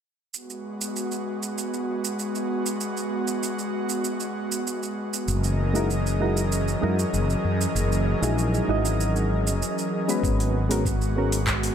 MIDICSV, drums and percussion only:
0, 0, Header, 1, 2, 480
1, 0, Start_track
1, 0, Key_signature, 5, "minor"
1, 0, Tempo, 618557
1, 264, Time_signature, 4, 2, 24, 8
1, 9116, End_track
2, 0, Start_track
2, 0, Title_t, "Drums"
2, 263, Note_on_c, 9, 82, 49
2, 341, Note_off_c, 9, 82, 0
2, 388, Note_on_c, 9, 82, 27
2, 465, Note_off_c, 9, 82, 0
2, 630, Note_on_c, 9, 82, 57
2, 707, Note_off_c, 9, 82, 0
2, 746, Note_on_c, 9, 82, 46
2, 824, Note_off_c, 9, 82, 0
2, 866, Note_on_c, 9, 82, 29
2, 944, Note_off_c, 9, 82, 0
2, 1106, Note_on_c, 9, 82, 57
2, 1184, Note_off_c, 9, 82, 0
2, 1226, Note_on_c, 9, 82, 49
2, 1304, Note_off_c, 9, 82, 0
2, 1349, Note_on_c, 9, 82, 31
2, 1426, Note_off_c, 9, 82, 0
2, 1586, Note_on_c, 9, 82, 61
2, 1664, Note_off_c, 9, 82, 0
2, 1701, Note_on_c, 9, 82, 46
2, 1779, Note_off_c, 9, 82, 0
2, 1825, Note_on_c, 9, 82, 29
2, 1903, Note_off_c, 9, 82, 0
2, 2064, Note_on_c, 9, 82, 60
2, 2142, Note_off_c, 9, 82, 0
2, 2177, Note_on_c, 9, 82, 52
2, 2255, Note_off_c, 9, 82, 0
2, 2305, Note_on_c, 9, 82, 29
2, 2382, Note_off_c, 9, 82, 0
2, 2540, Note_on_c, 9, 82, 60
2, 2618, Note_off_c, 9, 82, 0
2, 2662, Note_on_c, 9, 82, 51
2, 2739, Note_off_c, 9, 82, 0
2, 2784, Note_on_c, 9, 82, 31
2, 2862, Note_off_c, 9, 82, 0
2, 3020, Note_on_c, 9, 82, 58
2, 3098, Note_off_c, 9, 82, 0
2, 3138, Note_on_c, 9, 82, 53
2, 3216, Note_off_c, 9, 82, 0
2, 3260, Note_on_c, 9, 82, 34
2, 3337, Note_off_c, 9, 82, 0
2, 3505, Note_on_c, 9, 82, 63
2, 3582, Note_off_c, 9, 82, 0
2, 3625, Note_on_c, 9, 82, 51
2, 3703, Note_off_c, 9, 82, 0
2, 3747, Note_on_c, 9, 82, 29
2, 3825, Note_off_c, 9, 82, 0
2, 3984, Note_on_c, 9, 82, 57
2, 4062, Note_off_c, 9, 82, 0
2, 4097, Note_on_c, 9, 82, 51
2, 4175, Note_off_c, 9, 82, 0
2, 4220, Note_on_c, 9, 82, 33
2, 4298, Note_off_c, 9, 82, 0
2, 4465, Note_on_c, 9, 82, 61
2, 4542, Note_off_c, 9, 82, 0
2, 4582, Note_on_c, 9, 82, 52
2, 4659, Note_off_c, 9, 82, 0
2, 4707, Note_on_c, 9, 82, 32
2, 4784, Note_off_c, 9, 82, 0
2, 4942, Note_on_c, 9, 82, 58
2, 5020, Note_off_c, 9, 82, 0
2, 5060, Note_on_c, 9, 82, 53
2, 5137, Note_off_c, 9, 82, 0
2, 5183, Note_on_c, 9, 82, 33
2, 5261, Note_off_c, 9, 82, 0
2, 5424, Note_on_c, 9, 82, 65
2, 5502, Note_off_c, 9, 82, 0
2, 5540, Note_on_c, 9, 82, 52
2, 5617, Note_off_c, 9, 82, 0
2, 5665, Note_on_c, 9, 82, 30
2, 5742, Note_off_c, 9, 82, 0
2, 5906, Note_on_c, 9, 82, 60
2, 5983, Note_off_c, 9, 82, 0
2, 6022, Note_on_c, 9, 82, 51
2, 6100, Note_off_c, 9, 82, 0
2, 6147, Note_on_c, 9, 82, 32
2, 6225, Note_off_c, 9, 82, 0
2, 6386, Note_on_c, 9, 82, 64
2, 6464, Note_off_c, 9, 82, 0
2, 6506, Note_on_c, 9, 82, 54
2, 6584, Note_off_c, 9, 82, 0
2, 6630, Note_on_c, 9, 82, 33
2, 6707, Note_off_c, 9, 82, 0
2, 6869, Note_on_c, 9, 82, 62
2, 6946, Note_off_c, 9, 82, 0
2, 6988, Note_on_c, 9, 82, 54
2, 7065, Note_off_c, 9, 82, 0
2, 7109, Note_on_c, 9, 82, 33
2, 7186, Note_off_c, 9, 82, 0
2, 7349, Note_on_c, 9, 82, 67
2, 7427, Note_off_c, 9, 82, 0
2, 7467, Note_on_c, 9, 82, 52
2, 7545, Note_off_c, 9, 82, 0
2, 7593, Note_on_c, 9, 82, 31
2, 7670, Note_off_c, 9, 82, 0
2, 7830, Note_on_c, 9, 82, 64
2, 7908, Note_off_c, 9, 82, 0
2, 7942, Note_on_c, 9, 36, 96
2, 7949, Note_on_c, 9, 82, 49
2, 8020, Note_off_c, 9, 36, 0
2, 8026, Note_off_c, 9, 82, 0
2, 8071, Note_on_c, 9, 46, 29
2, 8073, Note_on_c, 9, 82, 31
2, 8149, Note_off_c, 9, 46, 0
2, 8150, Note_off_c, 9, 82, 0
2, 8309, Note_on_c, 9, 46, 54
2, 8310, Note_on_c, 9, 82, 63
2, 8386, Note_off_c, 9, 46, 0
2, 8388, Note_off_c, 9, 82, 0
2, 8423, Note_on_c, 9, 36, 93
2, 8429, Note_on_c, 9, 82, 52
2, 8500, Note_off_c, 9, 36, 0
2, 8507, Note_off_c, 9, 82, 0
2, 8548, Note_on_c, 9, 82, 30
2, 8625, Note_off_c, 9, 82, 0
2, 8787, Note_on_c, 9, 46, 51
2, 8789, Note_on_c, 9, 82, 65
2, 8865, Note_off_c, 9, 46, 0
2, 8866, Note_off_c, 9, 82, 0
2, 8902, Note_on_c, 9, 39, 76
2, 8903, Note_on_c, 9, 36, 94
2, 8903, Note_on_c, 9, 82, 51
2, 8979, Note_off_c, 9, 39, 0
2, 8981, Note_off_c, 9, 36, 0
2, 8981, Note_off_c, 9, 82, 0
2, 9028, Note_on_c, 9, 46, 45
2, 9030, Note_on_c, 9, 82, 34
2, 9106, Note_off_c, 9, 46, 0
2, 9107, Note_off_c, 9, 82, 0
2, 9116, End_track
0, 0, End_of_file